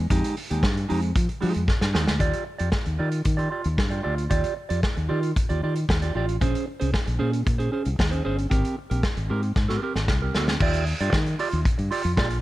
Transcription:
0.10 fingered electric bass F2, clean electric guitar G#3 D#4 G4, kick, closed hi-hat
0.24 closed hi-hat
0.37 muted clean electric guitar stroke, open hi-hat
0.50 fingered electric bass D#2, clean electric guitar G#3 D#4 G4, closed hi-hat
0.63 fingered electric bass G2, kick, snare
0.76 muted clean electric guitar stroke, closed hi-hat
0.89 fingered electric bass F2, clean electric guitar G#3 D#4 G4, open hi-hat
1.02 muted clean electric guitar stroke, closed hi-hat
1.15 fingered electric bass F3, muted clean electric guitar stroke, kick, closed hi-hat
1.29 muted clean electric guitar stroke, closed hi-hat
1.41 fingered electric bass F3, clean electric guitar G#3 D#4 G4, open hi-hat
1.54 fingered electric bass F2, muted clean electric guitar stroke, closed hi-hat
1.67 muted clean electric guitar stroke, kick, snare
1.81 fingered electric bass G2, muted clean electric guitar stroke, snare
1.94 fingered electric bass D#2, clean electric guitar G#3 D#4 G4, snare
2.06 fingered electric bass D2, muted clean electric guitar stroke, snare
2.19 fingered electric bass D#2, clean electric guitar F4 G4 D5, kick, closed hi-hat
2.33 closed hi-hat
2.46 muted clean electric guitar stroke
2.58 fingered electric bass F2, clean electric guitar F4 G4 D5, closed hi-hat
2.72 muted clean electric guitar stroke, kick, snare
2.85 fingered electric bass D#2, muted clean electric guitar stroke, closed hi-hat
2.99 fingered electric bass D#3, clean electric guitar F4 G4 D5
3.11 muted clean electric guitar stroke, closed hi-hat
3.24 fingered electric bass D#3, muted clean electric guitar stroke, kick, closed hi-hat
3.37 clean electric guitar F4 G4 D5, closed hi-hat
3.50 clean electric guitar F4 G4 D5
3.64 fingered electric bass D#2, muted clean electric guitar stroke, closed hi-hat
3.77 fingered electric bass G2, muted clean electric guitar stroke, kick, snare
3.90 clean electric guitar F4 G4 D5, closed hi-hat
4.03 fingered electric bass D2, clean electric guitar F4 G4 D5
4.17 muted clean electric guitar stroke, closed hi-hat
4.30 fingered electric bass D#2, clean electric guitar F4 G4 D5, kick, closed hi-hat
4.44 closed hi-hat
4.56 muted clean electric guitar stroke
4.69 fingered electric bass F2, clean electric guitar F4 G4 D5, closed hi-hat
4.82 muted clean electric guitar stroke, kick, snare
4.96 fingered electric bass D#2, muted clean electric guitar stroke, closed hi-hat
5.09 fingered electric bass D#3, clean electric guitar F4 G4 D5
5.22 muted clean electric guitar stroke, closed hi-hat
5.36 muted clean electric guitar stroke, kick, closed hi-hat
5.49 fingered electric bass D#2, clean electric guitar F4 G4 D5, closed hi-hat
5.63 fingered electric bass D#3, clean electric guitar F4 G4 D5
5.76 muted clean electric guitar stroke, closed hi-hat
5.89 fingered electric bass D#2, muted clean electric guitar stroke, kick, snare
6.02 clean electric guitar F4 G4 D5, closed hi-hat
6.15 fingered electric bass A1, clean electric guitar F4 G4 D5
6.28 muted clean electric guitar stroke, closed hi-hat
6.41 fingered electric bass A#1, clean electric guitar C#4 G#4 C5, kick, closed hi-hat
6.55 closed hi-hat
6.67 muted clean electric guitar stroke
6.80 fingered electric bass C2, clean electric guitar C#4 G#4 C5, closed hi-hat
6.92 muted clean electric guitar stroke, kick, snare
7.06 fingered electric bass A#1, muted clean electric guitar stroke, closed hi-hat
7.19 fingered electric bass A#2, clean electric guitar C#4 G#4 C5
7.32 muted clean electric guitar stroke, closed hi-hat
7.45 fingered electric bass A#2, muted clean electric guitar stroke, kick, closed hi-hat
7.58 clean electric guitar C#4 G#4 C5, closed hi-hat
7.72 clean electric guitar C#4 G#4 C5
7.85 fingered electric bass C2, muted clean electric guitar stroke, closed hi-hat
7.98 fingered electric bass D#2, muted clean electric guitar stroke, kick, snare
8.11 clean electric guitar C#4 G#4 C5, closed hi-hat
8.24 fingered electric bass G1, clean electric guitar C#4 G#4 C5
8.39 muted clean electric guitar stroke, closed hi-hat
8.50 fingered electric bass G#1, clean electric guitar C4 G4 A#4, kick, closed hi-hat
8.65 closed hi-hat
8.78 muted clean electric guitar stroke
8.90 fingered electric bass A#1, clean electric guitar C4 G4 A#4, closed hi-hat
9.03 kick, snare
9.17 fingered electric bass G#1, muted clean electric guitar stroke, closed hi-hat
9.29 fingered electric bass G#2, clean electric guitar C4 G4 A#4
9.43 muted clean electric guitar stroke, closed hi-hat
9.56 fingered electric bass G#2, muted clean electric guitar stroke, kick, snare
9.68 clean electric guitar C4 G4 A#4, snare
9.82 clean electric guitar C4 G4 A#4
9.95 fingered electric bass G#1, muted clean electric guitar stroke, snare
10.08 fingered electric bass C2, muted clean electric guitar stroke, kick, snare
10.22 clean electric guitar C4 G4 A#4
10.35 fingered electric bass D2, clean electric guitar C4 G4 A#4, snare
10.48 muted clean electric guitar stroke, snare
10.60 fingered electric bass D#2, clean electric guitar F4 G4 D5, kick, crash
10.74 closed hi-hat
10.86 muted clean electric guitar stroke, open hi-hat
11.00 fingered electric bass G2, clean electric guitar F4 G4 D5, closed hi-hat
11.13 fingered electric bass D#3, kick, snare
11.26 muted clean electric guitar stroke, closed hi-hat
11.39 clean electric guitar F4 G4 D5, open hi-hat
11.51 fingered electric bass D#2, muted clean electric guitar stroke, closed hi-hat
11.65 kick, closed hi-hat
11.78 fingered electric bass G2, muted clean electric guitar stroke, closed hi-hat
11.91 clean electric guitar F4 G4 D5, open hi-hat
12.04 fingered electric bass F2, muted clean electric guitar stroke, closed hi-hat
12.17 fingered electric bass A#1, clean electric guitar F4 G4 D5, kick, snare
12.30 muted clean electric guitar stroke, closed hi-hat

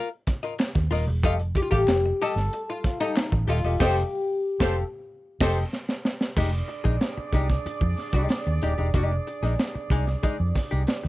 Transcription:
0.27 muted hollow-body jazz guitar stroke, kick, snare, closed hi-hat
0.43 hollow-body jazz guitar F4 A#4 D#5, closed hi-hat
0.58 muted hollow-body jazz guitar stroke, snare, clap, closed hi-hat
0.75 fingered electric bass D#2, muted hollow-body jazz guitar stroke, kick, snare
0.91 fingered electric bass D#1, hollow-body jazz guitar F4 A#4 D#5, snare, open hi-hat
1.07 fingered electric bass E1, muted hollow-body jazz guitar stroke
1.23 fingered electric bass F1, oud F4, hollow-body jazz guitar G4 A4 D#5, kick, closed hi-hat
1.39 muted hollow-body jazz guitar stroke, closed hi-hat
1.55 oud G4, muted hollow-body jazz guitar stroke, kick, closed hi-hat
1.62 oud F4
1.71 fingered electric bass A1, oud G4, hollow-body jazz guitar G4 A4 F5, kick
1.87 fingered electric bass F1, muted hollow-body jazz guitar stroke, snare, clap, closed hi-hat
2.06 muted hollow-body jazz guitar stroke
2.21 hollow-body jazz guitar G4 A4 D#5, oud A4, open hi-hat
2.36 fingered electric bass G1, muted hollow-body jazz guitar stroke, snare
2.53 muted hollow-body jazz guitar stroke, closed hi-hat
2.70 oud F4, muted hollow-body jazz guitar stroke
2.84 kick, snare, closed hi-hat
3.00 oud D#4, hollow-body jazz guitar G4 A4 D#5, closed hi-hat
3.16 muted hollow-body jazz guitar stroke, snare, clap, closed hi-hat
3.32 fingered electric bass A1, muted hollow-body jazz guitar stroke, kick
3.48 fingered electric bass D#1, oud F4, hollow-body jazz guitar G4 A4 D#5, open hi-hat
3.64 fingered electric bass E1, hollow-body jazz guitar G4 A4 D#5
3.79 fingered electric bass F1, horn section G4 A4 C5, hollow-body jazz guitar G4 A4 D#5, oud G4, kick, snare, crash
4.60 fingered electric bass F1, horn section G4 A4 C5, hollow-body jazz guitar G4 A4 F5, kick, snare
5.40 fingered electric bass F1, horn section G4 A4 C5, hollow-body jazz guitar G4 A4 D#5, kick, snare, crash
5.73 snare
5.89 snare
6.05 snare
6.21 snare
6.36 fingered electric bass F1, hollow-body jazz guitar G#3 D#4 G4, horn section D4 G#4 D5, kick, crash
6.53 muted hollow-body jazz guitar stroke
6.68 muted hollow-body jazz guitar stroke, closed hi-hat
6.84 fingered electric bass A#1, hollow-body jazz guitar G#3 D#4 G#4, kick
7.00 muted hollow-body jazz guitar stroke, snare, closed hi-hat
7.17 muted hollow-body jazz guitar stroke, muted fingered electric bass stroke
7.33 fingered electric bass C2, hollow-body jazz guitar G#3 D#4 G4, kick, closed hi-hat
7.49 muted hollow-body jazz guitar stroke, kick, snare
7.66 muted fingered electric bass stroke, muted hollow-body jazz guitar stroke, closed hi-hat
7.81 fingered electric bass F2, muted hollow-body jazz guitar stroke, kick
7.97 snare, open hi-hat
8.13 fingered electric bass C2, hollow-body jazz guitar G#3 D#4 G4, kick, closed hi-hat
8.29 muted hollow-body jazz guitar stroke, snare, closed hi-hat
8.46 fingered electric bass D#2, muted hollow-body jazz guitar stroke, closed hi-hat
8.62 fingered electric bass D#1, hollow-body jazz guitar G#3 D#4 G4, closed hi-hat
8.78 fingered electric bass E1, hollow-body jazz guitar G#3 D#4 G4
8.94 fingered electric bass F1, hollow-body jazz guitar G#3 D#4 G4, kick, closed hi-hat
9.11 muted hollow-body jazz guitar stroke
9.27 muted hollow-body jazz guitar stroke, closed hi-hat
9.43 fingered electric bass A#1, hollow-body jazz guitar G#3 D#4 G#4, snare
9.59 muted hollow-body jazz guitar stroke, snare, closed hi-hat
9.75 muted hollow-body jazz guitar stroke, muted fingered electric bass stroke
9.90 fingered electric bass C2, hollow-body jazz guitar G#3 D#4 G#4, kick, closed hi-hat
10.07 muted hollow-body jazz guitar stroke, snare
10.23 hollow-body jazz guitar G#3 D#4 G#4, muted fingered electric bass stroke, kick, closed hi-hat
10.40 fingered electric bass F2
10.55 muted hollow-body jazz guitar stroke, kick, snare, open hi-hat
10.71 fingered electric bass C2, hollow-body jazz guitar G#3 D#4 G4, closed hi-hat
10.87 muted hollow-body jazz guitar stroke, snare, closed hi-hat
11.03 fingered electric bass D#2, muted hollow-body jazz guitar stroke, snare, closed hi-hat

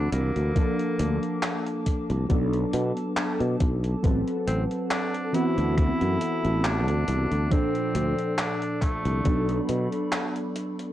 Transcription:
Already playing: synth keys E3 C4 D4 F#4, ambient pad F#5 B5 E6
0.12 fretless electric bass C2, tenor saxophone A#3, closed hi-hat
0.36 fretless electric bass D2, closed hi-hat
0.54 synth keys F3 A#3 D4 A4, ambient pad A#3 A5 D6, kick, closed hi-hat
0.79 closed hi-hat
0.99 fretless electric bass D2, closed hi-hat
1.23 closed hi-hat
1.43 clap, closed hi-hat
1.66 closed hi-hat
1.86 kick, closed hi-hat
2.10 fretless electric bass C2, closed hi-hat
2.29 fretless electric bass B1, synth keys F#3 B3 D4 A4, ambient pad A4 A5, kick, closed hi-hat
2.53 closed hi-hat
2.73 fretless electric bass B2, closed hi-hat
2.97 closed hi-hat
3.17 clap, closed hi-hat
3.40 fretless electric bass B2, closed hi-hat
3.60 fretless electric bass B1, kick, closed hi-hat
3.84 closed hi-hat
4.02 fretless electric bass A1, synth keys F#3 C4 A4 B4, ambient pad F#5 A5, kick, closed hi-hat
4.28 closed hi-hat
4.47 fretless electric bass A1, tenor saxophone C4, closed hi-hat
4.71 closed hi-hat
4.91 tenor saxophone D4, clap, closed hi-hat
5.14 closed hi-hat
5.33 synth keys E3 B3 C4 F#4, tenor saxophone E4, ambient pad E5, closed hi-hat
5.58 fretless electric bass D2, closed hi-hat
5.77 tenor saxophone E4, kick, closed hi-hat
6.01 fretless electric bass F#2, closed hi-hat
6.21 closed hi-hat
6.45 fretless electric bass A1, closed hi-hat
6.65 tenor saxophone D4, clap, closed hi-hat
6.88 fretless electric bass D2, closed hi-hat
7.08 fretless electric bass C2, closed hi-hat
7.31 fretless electric bass D2, closed hi-hat
7.50 synth keys A#2 F3 D4 A4, tenor saxophone C4, ambient pad A4 D5, kick, closed hi-hat
7.75 closed hi-hat
7.95 fretless electric bass D2, closed hi-hat
8.18 closed hi-hat
8.38 tenor saxophone D4, clap, closed hi-hat
8.62 closed hi-hat
8.82 tenor saxophone A3, kick, clap, closed hi-hat
9.05 fretless electric bass C2, closed hi-hat
9.24 fretless electric bass B1, synth keys F#3 B3 D4 A4, ambient pad B5, kick, closed hi-hat
9.49 closed hi-hat
9.69 fretless electric bass B2, closed hi-hat
9.92 closed hi-hat
10.12 clap, closed hi-hat
10.36 closed hi-hat
10.56 closed hi-hat
10.79 closed hi-hat

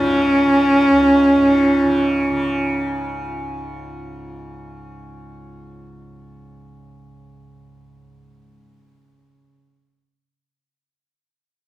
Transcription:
Already playing: tanpura C#2 G#2 C#3, sarangi C#4
0.45 tanpura C#3
0.91 tanpura C#2
1.36 tanpura G#2
1.83 tanpura C#3
2.29 tanpura C#3

